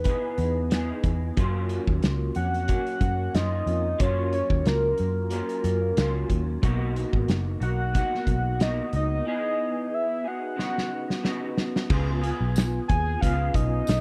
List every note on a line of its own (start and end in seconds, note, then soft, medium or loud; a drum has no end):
0.00 0.13 E2 medium
0.00 0.99 B4 medium
0.04 0.69 E3 medium
0.04 0.71 B3 medium
0.04 0.71 D#4 medium
0.04 kick medium
0.04 closed hi-hat medium
0.09 0.72 G#4 medium
0.38 0.91 E2 medium
0.38 closed hi-hat medium
0.70 1.36 E3 medium
0.70 1.37 B3 medium
0.70 1.37 D#4 medium
0.70 1.38 G#4 medium
0.70 snare loud
0.70 closed hi-hat medium
1.03 1.30 E2 medium
1.03 kick medium
1.03 closed hi-hat medium
1.37 1.78 F#2 medium
1.37 2.67 F#3 medium
1.37 2.38 A#3 medium
1.37 2.36 C#4 medium
1.37 2.37 F4 medium
1.37 kick loud
1.37 closed hi-hat medium
1.69 closed hi-hat medium
1.87 1.99 D#2 medium
1.87 kick medium
2.03 2.29 C#2 medium
2.03 snare loud
2.03 closed hi-hat medium
2.35 2.77 F2 medium
2.35 2.68 A#3 soft
2.35 2.69 C#4 soft
2.35 3.36 F#5 loud
2.35 closed hi-hat medium
2.54 closed hi-hat soft
2.68 3.40 F#3 medium
2.68 3.35 A#3 medium
2.68 3.35 C#4 medium
2.68 kick medium
2.68 closed hi-hat medium
2.87 closed hi-hat soft
3.01 3.27 F#2 medium
3.01 kick medium
3.01 closed hi-hat medium
3.35 3.61 F#2 medium
3.35 4.00 A#3 medium
3.35 4.01 C#4 medium
3.35 4.01 F4 medium
3.35 4.02 D#5 medium
3.35 snare loud
3.35 closed hi-hat medium
3.66 3.93 F2 medium
3.66 closed hi-hat medium
3.99 4.41 F#2 medium
3.99 5.30 F#3 medium
3.99 5.31 A#3 medium
3.99 5.31 C#4 medium
3.99 4.33 C#5 loud
3.99 kick loud
3.99 closed hi-hat medium
4.04 5.32 F4 medium
4.33 4.68 C#5 medium
4.33 closed hi-hat medium
4.50 4.62 D#2 medium
4.50 kick medium
4.66 4.92 C#2 medium
4.66 5.32 A#4 medium
4.66 snare loud
4.66 closed hi-hat medium
4.98 5.40 F#2 medium
4.98 closed hi-hat medium
5.30 5.96 F#3 medium
5.30 5.98 A#3 medium
5.30 5.98 C#4 medium
5.30 5.99 F4 medium
5.30 6.27 A#4 medium
5.30 closed hi-hat medium
5.49 closed hi-hat soft
5.64 5.91 F#2 medium
5.64 closed hi-hat medium
5.97 6.24 C#2 medium
5.97 9.25 F#3 medium
5.97 6.63 A#3 medium
5.97 6.64 C#4 medium
5.97 6.64 F4 medium
5.97 snare loud
5.97 closed hi-hat medium
6.30 6.56 D#2 medium
6.30 kick medium
6.30 closed hi-hat medium
6.62 7.04 B1 medium
6.62 7.62 B2 medium
6.62 7.62 A#3 medium
6.62 7.62 D#4 medium
6.62 7.59 F#4 medium
6.62 kick loud
6.62 closed hi-hat medium
6.96 closed hi-hat medium
7.13 7.26 G#1 medium
7.13 kick medium
7.28 7.55 F#1 medium
7.28 snare loud
7.28 closed hi-hat medium
7.60 8.02 B1 medium
7.60 7.94 A#3 soft
7.60 7.94 D#4 soft
7.60 7.94 F#4 soft
7.60 8.63 F#5 loud
7.60 closed hi-hat medium
7.93 8.58 B2 medium
7.93 8.60 A#3 medium
7.93 8.61 D#4 medium
7.93 8.62 F#4 medium
7.93 kick medium
7.93 closed hi-hat medium
8.15 snare soft
8.27 8.80 B1 loud
8.27 kick medium
8.27 closed hi-hat medium
8.60 9.26 B2 medium
8.60 9.27 A#3 medium
8.60 9.28 D#4 medium
8.60 9.28 F#4 medium
8.60 8.94 D#5 medium
8.60 snare loud
8.60 closed hi-hat medium
8.93 9.20 C#2 medium
8.93 9.25 D#5 loud
8.93 closed hi-hat medium
9.25 10.25 E3 medium
9.25 10.27 B3 medium
9.25 10.24 G#4 medium
9.25 9.96 D#5 loud
9.94 10.29 E5 loud
10.24 10.56 B3 soft
10.24 10.57 D#4 soft
10.24 10.58 G#4 soft
10.24 11.58 F#5 loud
10.56 11.22 C#3 medium
10.56 11.23 B3 soft
10.56 11.24 D#4 medium
10.56 11.25 F#4 medium
10.56 snare medium
10.78 snare medium
11.10 snare medium
11.23 11.88 C#3 medium
11.23 11.90 B3 medium
11.23 11.91 D#4 medium
11.23 11.91 F#4 medium
11.23 snare medium
11.58 snare medium
11.76 snare medium
11.89 12.31 C#2 medium
11.89 12.23 C#3 medium
11.89 12.23 B3 medium
11.89 12.22 F4 medium
11.89 12.20 G#4 loud
11.89 kick loud
11.89 crash medium
12.22 13.21 B3 soft
12.22 13.24 F4 medium
12.22 13.21 G#4 medium
12.22 closed hi-hat medium
12.41 12.79 B1 medium
12.56 snare loud
12.56 closed hi-hat medium
12.56 tambourine medium
12.88 13.16 D#2 medium
12.88 13.23 G#5 loud
12.88 kick loud
12.88 closed hi-hat medium
13.19 13.48 C#2 medium
13.19 14.01 C#3 medium
13.19 14.01 B3 medium
13.19 13.56 F5 loud
13.19 kick medium
13.19 closed hi-hat medium
13.24 14.01 F4 medium
13.24 14.01 G#4 medium
13.54 13.81 B1 medium
13.54 14.01 D#5 loud
13.54 kick medium
13.54 closed hi-hat medium
13.87 14.01 B1 medium
13.87 snare loud
13.87 closed hi-hat loud
13.87 tambourine medium